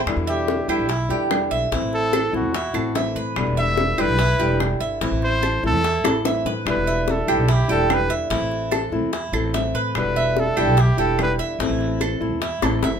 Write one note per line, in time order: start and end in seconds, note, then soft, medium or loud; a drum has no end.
0.06 0.16 E2 loud
0.06 0.68 B2 medium
0.06 0.68 D3 medium
0.06 0.68 G3 medium
0.06 0.68 B3 medium
0.06 0.68 E4 medium
0.06 high bongo medium
0.06 claves medium
0.17 0.66 E2 loud
0.27 0.67 G4 medium
0.27 0.67 E5 medium
0.48 high bongo medium
0.68 0.80 E2 loud
0.68 0.88 D3 medium
0.68 0.88 G3 medium
0.68 0.88 B3 medium
0.68 0.88 E4 medium
0.68 1.27 E4 medium
0.68 0.89 G4 medium
0.68 claves medium
0.79 1.08 B1 medium
0.89 1.09 E4 medium
0.89 muted nylon-string guitar stroke medium
0.89 high bongo medium
1.09 1.49 E2 loud
1.09 1.29 D3 medium
1.09 1.29 G3 medium
1.09 1.30 B3 medium
1.09 1.29 E4 medium
1.09 1.50 G4 medium
1.30 1.71 D3 medium
1.30 1.71 G3 medium
1.30 1.71 B3 medium
1.30 1.72 E4 medium
1.30 high bongo medium
1.30 low bongo medium
1.30 claves medium
1.51 1.71 B1 medium
1.51 1.71 E5 medium
1.71 1.81 A1 loud
1.71 2.54 E3 medium
1.71 2.33 A3 medium
1.71 2.33 C4 medium
1.71 2.12 E4 medium
1.71 2.33 E4 medium
1.71 high bongo medium
1.82 2.31 A1 loud
1.93 2.32 A4 loud
1.93 high bongo soft
2.13 2.53 A4 medium
2.13 high bongo medium
2.13 claves medium
2.33 2.43 A1 medium
2.33 2.53 A3 medium
2.33 2.54 C4 medium
2.33 2.53 E4 medium
2.33 2.93 F#4 medium
2.33 high bongo soft
2.43 2.73 E2 medium
2.54 2.74 E4 medium
2.54 muted nylon-string guitar stroke medium
2.54 high bongo medium
2.73 3.14 A1 loud
2.73 2.95 A3 medium
2.73 2.94 C4 medium
2.73 2.94 E4 medium
2.73 2.95 A4 medium
2.73 high bongo soft
2.73 claves medium
2.95 3.36 E3 medium
2.95 3.36 A3 medium
2.95 3.36 C4 medium
2.95 3.37 E4 medium
2.95 3.16 E5 medium
2.95 high bongo medium
2.95 low bongo medium
3.16 3.35 A2 medium
3.16 3.56 B4 medium
3.36 3.46 E1 loud
3.36 3.98 B2 medium
3.36 3.98 D3 medium
3.36 3.98 G3 medium
3.36 3.97 B3 medium
3.36 3.97 E4 medium
3.36 high bongo medium
3.36 claves medium
3.47 3.96 E1 loud
3.57 3.97 E5 medium
3.57 4.02 E5 loud
3.77 high bongo medium
3.98 4.08 E1 medium
3.98 4.17 D3 medium
3.98 4.18 G3 medium
3.98 4.18 B3 medium
3.98 4.18 E4 medium
3.98 4.18 G4 medium
3.98 4.61 B4 loud
3.98 claves medium
4.08 4.38 B1 medium
4.18 4.39 E4 medium
4.18 muted nylon-string guitar stroke medium
4.18 high bongo medium
4.39 4.79 E1 loud
4.39 4.60 D3 medium
4.39 4.60 G3 medium
4.39 4.60 B3 medium
4.39 4.59 E4 medium
4.39 4.80 G4 medium
4.60 5.01 D3 medium
4.60 5.01 G3 soft
4.60 5.01 B3 medium
4.60 5.02 E4 medium
4.60 high bongo medium
4.60 low bongo medium
4.60 claves medium
4.80 5.00 G1 medium
4.80 5.01 E5 medium
5.01 5.11 A1 medium
5.01 5.83 E3 medium
5.01 5.63 A3 medium
5.01 5.63 C4 medium
5.01 5.41 E4 medium
5.01 5.63 E4 medium
5.01 high bongo medium
5.11 5.61 A1 loud
5.22 5.61 C5 loud
5.22 high bongo soft
5.43 5.83 A4 medium
5.43 high bongo medium
5.43 claves medium
5.63 5.74 A1 loud
5.63 5.83 A3 medium
5.63 5.83 C4 medium
5.63 5.83 E4 medium
5.63 6.22 A4 loud
5.63 high bongo soft
5.74 6.03 E2 medium
5.84 6.04 E4 medium
5.84 muted nylon-string guitar stroke medium
5.84 high bongo medium
6.04 6.44 A1 loud
6.04 6.24 A3 medium
6.04 6.24 C4 medium
6.04 6.24 E4 medium
6.04 6.25 A4 medium
6.04 high bongo loud
6.04 claves medium
6.24 6.65 E3 medium
6.24 6.66 A3 medium
6.24 6.66 C4 medium
6.24 6.66 E4 medium
6.24 6.45 E5 medium
6.24 low bongo medium
6.45 6.65 A2 medium
6.45 6.86 B4 medium
6.45 low bongo medium
6.65 6.76 E1 loud
6.65 7.27 B2 medium
6.65 7.27 D3 medium
6.65 7.27 G3 medium
6.65 7.26 B3 medium
6.65 7.27 E4 medium
6.65 high bongo medium
6.65 claves medium
6.70 7.12 B4 medium
6.76 7.25 E1 loud
6.87 7.27 E5 medium
7.08 7.54 A4 medium
7.08 high bongo medium
7.27 7.38 E1 medium
7.27 7.47 D3 medium
7.27 7.47 G3 medium
7.27 7.47 B3 medium
7.27 7.47 E4 medium
7.27 7.48 G4 medium
7.27 claves medium
7.38 7.67 B1 loud
7.48 7.69 E4 medium
7.48 muted nylon-string guitar stroke medium
7.48 high bongo medium
7.52 7.70 G4 medium
7.68 8.08 E1 loud
7.68 7.88 D3 medium
7.68 7.89 G3 medium
7.68 7.89 B3 medium
7.68 7.88 E4 medium
7.68 8.09 G4 medium
7.68 7.95 A4 medium
7.89 8.30 D3 medium
7.89 8.30 G3 soft
7.89 8.30 B3 medium
7.89 8.31 E4 medium
7.89 high bongo medium
7.89 low bongo medium
7.89 claves medium
7.94 8.12 B4 medium
8.10 8.30 E2 medium
8.10 8.30 E5 medium
8.30 8.40 A1 loud
8.30 9.13 E3 medium
8.30 8.92 A3 medium
8.30 8.92 C4 medium
8.30 8.71 E4 medium
8.30 8.92 E4 medium
8.30 high bongo medium
8.40 8.90 A1 loud
8.52 high bongo soft
8.71 9.12 A4 medium
8.71 high bongo medium
8.71 claves medium
8.92 9.02 A1 medium
8.92 9.12 A3 medium
8.92 9.12 C4 medium
8.92 9.12 E4 medium
8.92 high bongo soft
9.02 9.32 E2 medium
9.13 9.33 E4 medium
9.13 muted nylon-string guitar stroke medium
9.13 high bongo medium
9.33 9.72 A1 loud
9.33 9.54 A3 medium
9.33 9.54 C4 medium
9.33 9.53 E4 medium
9.33 9.54 A4 medium
9.33 high bongo soft
9.33 claves medium
9.54 9.95 E3 medium
9.54 9.95 A3 medium
9.54 9.95 C4 medium
9.54 9.96 E4 medium
9.54 9.74 E5 medium
9.54 high bongo medium
9.54 low bongo medium
9.74 9.94 A2 medium
9.74 10.15 B4 medium
9.95 10.04 E1 loud
9.95 10.56 B2 medium
9.95 10.57 D3 medium
9.95 10.57 G3 medium
9.95 10.56 B3 medium
9.95 10.57 E4 medium
9.95 10.41 B4 medium
9.95 high bongo medium
9.95 claves medium
10.05 10.54 E1 medium
10.16 10.56 E5 medium
10.37 10.82 A4 medium
10.37 high bongo medium
10.57 10.67 E1 medium
10.57 10.77 D3 medium
10.57 10.77 G3 medium
10.57 10.77 B3 medium
10.57 10.77 E4 medium
10.57 10.77 G4 medium
10.57 claves medium
10.67 10.96 B1 loud
10.77 10.97 E4 medium
10.77 10.99 G4 medium
10.77 muted nylon-string guitar stroke medium
10.77 high bongo medium
10.97 11.37 E1 loud
10.97 11.18 D3 medium
10.97 11.18 G3 medium
10.97 11.18 B3 medium
10.97 11.18 E4 medium
10.97 11.38 G4 medium
10.97 11.18 A4 medium
11.19 11.59 D3 medium
11.19 11.59 G3 medium
11.19 11.60 B3 medium
11.19 11.60 E4 medium
11.19 11.34 B4 medium
11.19 high bongo medium
11.19 low bongo medium
11.19 claves medium
11.38 11.58 E2 medium
11.38 11.59 E5 medium
11.59 11.69 A1 loud
11.59 12.21 E3 medium
11.59 12.21 A3 medium
11.59 12.20 C4 medium
11.59 12.00 E4 medium
11.59 12.19 E4 medium
11.59 high bongo medium
11.69 12.19 A1 loud
11.81 high bongo soft
12.01 12.41 A4 medium
12.01 high bongo medium
12.01 claves medium
12.20 12.31 A1 loud
12.20 12.41 A3 medium
12.20 12.41 C4 medium
12.20 12.41 E4 medium
12.20 high bongo soft
12.31 12.61 E2 medium
12.42 12.62 E4 medium
12.42 muted nylon-string guitar stroke medium
12.42 high bongo medium
12.62 12.82 A1 loud
12.62 12.82 A3 medium
12.62 12.83 C4 medium
12.62 12.82 E4 medium
12.62 12.83 A4 medium
12.62 high bongo loud
12.62 claves medium
12.83 13.00 F#1 medium
12.83 13.00 E3 medium
12.83 13.00 A3 medium
12.83 13.00 C4 medium
12.83 13.00 E4 medium
12.83 13.00 E5 medium
12.83 high bongo medium